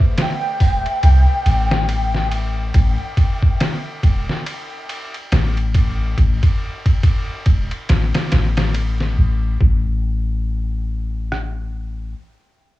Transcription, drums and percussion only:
0.00 kick
0.17 snare, ride
0.60 kick, open hi-hat
0.86 ride
1.03 ride
1.46 ride
1.72 snare
1.89 ride
2.15 snare
2.32 ride
2.74 kick, ride
3.17 kick, ride
3.43 kick
3.60 snare, ride
4.03 kick, ride
4.29 snare
4.46 ride
4.89 ride
5.14 ride
5.32 snare, ride
5.57 ride
5.74 kick, ride
6.18 kick, ride
6.43 kick, ride
6.86 kick, ride
7.03 kick, ride
7.46 kick, ride
7.71 ride
7.89 snare, ride
8.14 snare, ride
8.32 snare, ride
8.57 snare, ride
8.74 ride
9.00 snare
9.61 kick
11.32 cross-stick

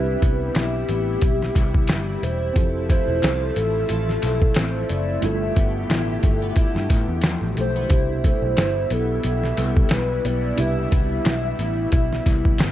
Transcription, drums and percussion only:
0.22 kick, closed hi-hat
0.55 snare, clap, closed hi-hat
0.89 closed hi-hat
1.22 kick, closed hi-hat
1.42 snare
1.56 kick, clap, closed hi-hat
1.74 kick
1.87 snare, clap, closed hi-hat
2.23 closed hi-hat
2.56 kick, closed hi-hat
2.90 kick, closed hi-hat
3.23 snare, clap, closed hi-hat
3.56 closed hi-hat
3.89 closed hi-hat
4.09 snare
4.22 clap, closed hi-hat
4.42 kick
4.54 snare, clap, closed hi-hat
4.89 closed hi-hat
5.22 closed hi-hat
5.56 kick, closed hi-hat
5.90 snare, clap, closed hi-hat
6.23 kick, closed hi-hat
6.56 kick, closed hi-hat
6.76 snare
6.90 kick, clap, closed hi-hat
7.22 snare, clap, closed hi-hat
7.57 closed hi-hat
7.90 kick, closed hi-hat
8.24 kick, closed hi-hat
8.57 snare, clap, closed hi-hat
8.90 closed hi-hat
9.23 closed hi-hat
9.43 snare
9.57 clap, closed hi-hat
9.77 kick
9.89 snare, clap, closed hi-hat
10.25 closed hi-hat
10.58 closed hi-hat
10.92 kick, closed hi-hat
11.25 snare, clap, closed hi-hat
11.59 closed hi-hat
11.92 kick, closed hi-hat
12.13 snare
12.26 kick, clap, closed hi-hat
12.45 kick
12.58 snare, clap, closed hi-hat

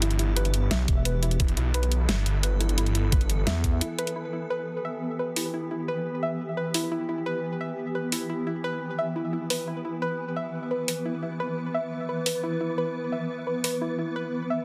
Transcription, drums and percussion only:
0.02 closed hi-hat
0.11 closed hi-hat
0.19 closed hi-hat
0.36 closed hi-hat
0.45 closed hi-hat
0.54 closed hi-hat
0.71 snare, closed hi-hat
0.88 kick, closed hi-hat
1.05 closed hi-hat
1.23 closed hi-hat
1.31 closed hi-hat
1.40 kick, closed hi-hat
1.48 closed hi-hat
1.57 closed hi-hat
1.74 closed hi-hat
1.83 closed hi-hat
1.92 closed hi-hat
2.09 snare, closed hi-hat
2.26 closed hi-hat
2.43 closed hi-hat
2.61 closed hi-hat
2.69 closed hi-hat
2.78 closed hi-hat
2.86 closed hi-hat
2.95 closed hi-hat
3.12 kick, closed hi-hat
3.21 closed hi-hat
3.30 closed hi-hat
3.47 snare, closed hi-hat
3.64 kick, closed hi-hat
3.81 closed hi-hat
3.99 closed hi-hat
4.07 closed hi-hat
5.36 open hi-hat
6.74 open hi-hat
8.12 open hi-hat
9.50 open hi-hat
10.88 open hi-hat
12.26 open hi-hat
13.64 open hi-hat

